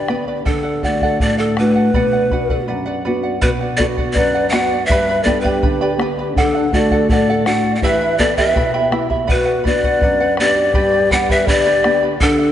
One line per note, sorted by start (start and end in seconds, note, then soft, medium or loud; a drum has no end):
0.00 0.45 D3 medium
0.00 0.24 D5 medium
0.08 0.39 B3 soft
0.08 0.39 D4 soft
0.08 0.39 G4 soft
0.08 0.28 B4 medium
0.08 0.27 D5 medium
0.08 0.28 G5 soft
0.08 0.27 B5 medium
0.08 bombo rim soft
0.28 0.47 B4 soft
0.28 0.44 D5 soft
0.28 0.45 B5 soft
0.45 1.18 D3 medium
0.45 0.64 A4 medium
0.45 0.86 A4 medium
0.45 0.63 D5 medium
0.45 0.62 F#5 medium
0.45 bombo low medium
0.63 0.83 D5 soft
0.63 0.83 F#5 soft
0.83 1.43 A3 soft
0.83 1.43 D4 soft
0.83 1.43 F#4 soft
0.83 1.02 A4 medium
0.83 1.02 D5 medium
0.83 1.21 D5 medium
0.83 1.02 F#5 medium
0.83 bombo low soft
1.01 1.19 A4 soft
1.01 1.20 D5 soft
1.01 1.21 F#5 medium
1.01 bombo low soft
1.20 1.93 A2 medium
1.20 1.38 A4 soft
1.20 1.38 D5 medium
1.20 1.37 F#5 medium
1.20 bombo low medium
1.38 1.56 A4 medium
1.38 1.56 A4 soft
1.38 1.57 D5 medium
1.38 1.57 F#5 medium
1.57 1.88 A3 soft
1.57 1.88 D4 soft
1.57 1.89 F#4 soft
1.57 1.76 A4 medium
1.57 2.65 B4 medium
1.57 1.75 D5 medium
1.57 1.74 F#5 medium
1.57 bombo rim soft
1.76 1.94 D5 soft
1.76 1.94 F#5 soft
1.94 2.66 B2 medium
1.94 2.13 B4 medium
1.94 2.13 D5 medium
1.94 2.12 F#5 medium
1.94 bombo low medium
2.13 2.31 D5 soft
2.13 2.31 F#5 soft
2.31 2.90 B3 soft
2.31 2.91 D4 soft
2.31 2.91 F#4 soft
2.31 2.50 B4 medium
2.31 2.50 D5 medium
2.31 2.49 F#5 medium
2.31 bombo low medium
2.49 2.67 B4 soft
2.49 2.67 D5 medium
2.49 2.68 F#5 medium
2.49 bombo low medium
2.68 3.41 F#2 medium
2.68 2.86 B4 medium
2.68 2.86 D5 medium
2.68 2.85 F#5 medium
2.86 3.04 B4 medium
2.86 3.04 D5 medium
2.86 3.05 F#5 medium
3.05 3.35 B3 soft
3.05 3.36 D4 soft
3.05 3.36 F#4 soft
3.05 3.23 B4 medium
3.05 3.24 D5 medium
3.05 3.22 F#5 medium
3.23 3.40 D5 soft
3.23 3.41 F#5 medium
3.42 4.14 B2 medium
3.42 3.51 F#4 medium
3.42 3.60 B4 medium
3.42 3.50 B4 medium
3.42 3.60 D5 medium
3.42 3.59 F#5 medium
3.42 bombo low medium
3.60 3.80 D5 soft
3.60 3.79 F#5 soft
3.77 4.38 B3 soft
3.77 4.38 D4 soft
3.77 4.38 F#4 medium
3.77 3.85 A4 medium
3.77 3.98 B4 medium
3.77 3.85 D5 medium
3.77 bombo low medium
3.81 3.97 D5 medium
3.81 3.96 F#5 medium
3.98 4.15 B4 soft
3.98 4.16 D5 medium
3.98 4.16 F#5 medium
3.98 bombo low medium
4.13 4.87 F#2 medium
4.13 4.48 B4 medium
4.13 4.35 B4 medium
4.13 4.48 D5 medium
4.13 bombo low medium
4.17 4.34 D5 medium
4.17 4.33 F#5 medium
4.34 4.52 B4 medium
4.34 4.53 D5 medium
4.34 4.53 F#5 medium
4.49 4.82 B3 soft
4.49 4.82 D4 soft
4.49 4.71 B4 medium
4.49 4.56 E5 medium
4.49 4.87 F#5 medium
4.49 bombo rim medium
4.53 4.82 F#4 medium
4.53 4.72 D5 medium
4.53 4.88 D5 medium
4.53 4.71 F#5 medium
4.72 4.90 D5 soft
4.72 4.90 F#5 soft
4.86 5.61 G2 medium
4.86 5.25 B4 medium
4.86 5.25 E5 medium
4.86 bombo low medium
4.90 5.08 G4 medium
4.90 5.09 B4 medium
4.90 5.09 D5 medium
4.90 5.08 G5 medium
4.90 5.08 B5 medium
5.09 5.25 B4 soft
5.09 5.26 D5 soft
5.09 5.26 B5 soft
5.23 5.84 B3 soft
5.23 5.84 D4 soft
5.23 5.85 G4 medium
5.23 5.42 A4 medium
5.23 5.44 B4 medium
5.23 5.40 D5 medium
5.23 5.44 G5 medium
5.23 bombo low medium
5.27 5.43 D5 medium
5.27 5.43 B5 medium
5.41 5.95 G4 medium
5.41 5.94 B4 medium
5.41 5.62 D5 medium
5.41 5.62 B5 medium
5.41 bombo low medium
5.45 5.63 G4 medium
5.45 5.62 B4 medium
5.45 5.61 G5 medium
5.63 6.34 D3 medium
5.63 5.81 B4 medium
5.63 5.81 D5 medium
5.63 5.81 G5 medium
5.63 5.80 B5 medium
5.63 bombo low medium
5.81 6.00 G4 soft
5.81 6.00 B4 medium
5.81 6.00 D5 medium
5.81 6.00 G5 medium
5.81 5.99 B5 medium
5.98 6.28 B3 soft
5.98 6.28 D4 soft
5.98 6.28 G4 medium
5.98 6.19 B4 medium
5.98 6.18 D5 medium
5.98 6.18 G5 medium
5.98 6.17 B5 medium
5.98 bombo rim medium
6.19 6.37 B4 soft
6.19 6.36 D5 soft
6.19 6.37 B5 soft
6.36 7.07 D3 medium
6.36 6.76 D4 medium
6.36 6.55 A4 medium
6.36 6.75 A4 medium
6.36 6.55 D5 medium
6.36 6.53 F#5 medium
6.36 bombo low medium
6.55 6.73 D5 soft
6.55 6.73 F#5 soft
6.72 7.31 A3 soft
6.72 7.32 D4 soft
6.72 7.32 F#4 medium
6.72 6.91 A4 medium
6.72 7.10 A4 medium
6.72 7.09 D5 medium
6.72 6.91 D5 medium
6.72 6.91 F#5 medium
6.72 bombo low medium
6.91 7.10 A4 medium
6.91 7.10 D5 soft
6.91 7.10 F#5 medium
6.91 bombo low medium
7.09 7.80 A2 medium
7.09 7.28 A4 soft
7.09 7.15 A#4 medium
7.09 7.48 D5 loud
7.09 7.29 D5 medium
7.09 7.28 F#5 medium
7.09 bombo low medium
7.14 7.47 A4 medium
7.30 7.46 A4 medium
7.30 7.46 D5 medium
7.30 7.47 F#5 medium
7.46 7.75 A3 soft
7.46 7.75 D4 soft
7.46 7.75 F#4 medium
7.46 7.65 A4 soft
7.46 7.76 D5 medium
7.46 7.65 D5 medium
7.46 7.75 F#5 medium
7.46 7.64 F#5 medium
7.46 bombo rim soft
7.65 7.82 D5 soft
7.65 7.83 F#5 soft
7.75 7.84 D5 medium
7.75 7.84 F#5 medium
7.82 8.53 E3 medium
7.82 8.01 E4 medium
7.82 8.01 G4 medium
7.82 8.21 B4 medium
7.82 8.20 E5 medium
7.82 8.00 E5 medium
7.82 8.02 G5 medium
7.82 8.00 B5 medium
7.82 bombo low medium
8.01 8.19 E4 soft
8.01 8.20 E5 soft
8.01 8.19 B5 soft
8.18 8.78 B3 soft
8.18 8.78 E4 soft
8.18 8.37 E4 medium
8.18 8.78 G4 medium
8.18 8.36 A4 medium
8.18 8.37 D5 medium
8.18 8.37 E5 medium
8.18 8.38 G5 medium
8.18 8.37 B5 medium
8.18 bombo low medium
8.36 8.55 E4 soft
8.36 8.56 G4 soft
8.36 8.88 B4 medium
8.36 8.88 E5 medium
8.36 8.56 E5 medium
8.36 8.55 G5 medium
8.36 8.56 B5 medium
8.36 bombo low soft
8.56 9.27 B2 medium
8.56 8.74 E4 medium
8.56 8.73 E5 medium
8.56 8.73 G5 medium
8.56 8.73 B5 medium
8.56 bombo low medium
8.74 8.91 E4 medium
8.74 8.93 G4 soft
8.74 8.92 E5 medium
8.74 8.91 G5 medium
8.74 8.92 B5 medium
8.91 9.21 B3 soft
8.91 9.10 E4 medium
8.91 9.22 E4 soft
8.91 9.22 G4 soft
8.91 9.09 E5 medium
8.91 9.10 G5 soft
8.91 9.09 B5 medium
8.91 bombo rim soft
9.10 9.27 E4 soft
9.10 9.29 E5 soft
9.10 9.29 B5 soft
9.10 bombo low soft
9.27 9.99 B2 medium
9.27 9.64 F#4 medium
9.27 9.46 B4 medium
9.27 9.64 B4 medium
9.27 9.46 D5 medium
9.27 9.44 F#5 medium
9.27 bombo low medium
9.45 9.64 D5 soft
9.45 9.64 F#5 soft
9.64 10.24 B3 soft
9.64 10.24 D4 soft
9.64 10.24 F#4 soft
9.64 9.83 B4 medium
9.64 10.35 B4 medium
9.64 9.83 D5 medium
9.64 10.35 D5 medium
9.64 9.83 F#5 medium
9.64 bombo low medium
9.83 10.01 B4 soft
9.83 10.02 D5 medium
9.83 10.02 F#5 medium
9.83 bombo low medium
10.01 10.73 F#2 medium
10.01 10.20 B4 medium
10.01 10.20 D5 medium
10.01 10.19 F#5 medium
10.01 bombo low medium
10.20 10.37 B4 medium
10.20 10.38 D5 medium
10.20 10.38 F#5 medium
10.37 10.68 B3 soft
10.37 10.68 D4 soft
10.37 11.13 G4 medium
10.37 10.56 B4 soft
10.37 10.56 D5 medium
10.37 11.14 D5 medium
10.37 10.55 F#5 medium
10.37 10.68 F#5 soft
10.37 bombo rim soft
10.56 10.74 D5 soft
10.56 10.74 F#5 medium
10.74 11.46 G2 medium
10.74 10.93 G4 medium
10.74 10.93 B4 medium
10.74 10.93 D5 medium
10.74 10.93 G5 medium
10.74 10.91 B5 medium
10.74 bombo low medium
10.92 11.10 B4 soft
10.92 11.10 D5 soft
10.92 11.10 B5 soft
11.10 11.70 B3 soft
11.10 11.70 D4 soft
11.10 11.71 G4 soft
11.10 11.29 B4 medium
11.10 11.29 D5 medium
11.10 11.32 D5 medium
11.10 11.33 F#5 medium
11.10 11.29 G5 medium
11.10 11.28 B5 medium
11.10 bombo low medium
11.29 11.48 G4 medium
11.29 11.47 B4 medium
11.29 11.50 B4 medium
11.29 11.47 D5 medium
11.29 11.50 E5 medium
11.29 11.46 G5 medium
11.29 11.47 B5 medium
11.29 bombo low medium
11.47 12.19 D3 medium
11.47 12.03 G4 medium
11.47 11.65 B4 medium
11.47 11.65 D5 medium
11.47 12.03 D5 loud
11.47 11.66 G5 soft
11.47 11.65 B5 medium
11.47 bombo low medium
11.66 11.85 G4 medium
11.66 11.84 B4 medium
11.66 11.84 D5 medium
11.66 11.83 G5 medium
11.66 11.84 B5 medium
11.84 12.14 B3 soft
11.84 12.14 D4 soft
11.84 12.14 G4 soft
11.84 12.03 B4 medium
11.84 12.03 D5 medium
11.84 12.02 G5 medium
11.84 12.02 B5 medium
11.84 bombo rim medium
12.03 12.21 B4 soft
12.03 12.21 D5 soft
12.03 12.21 B5 soft
12.21 12.52 D3 medium
12.21 12.52 D4 medium
12.21 12.52 A4 medium
12.21 12.39 A4 medium
12.21 12.39 D5 medium
12.21 12.38 F#5 medium
12.21 bombo low medium
12.39 12.52 D5 soft
12.39 12.52 F#5 soft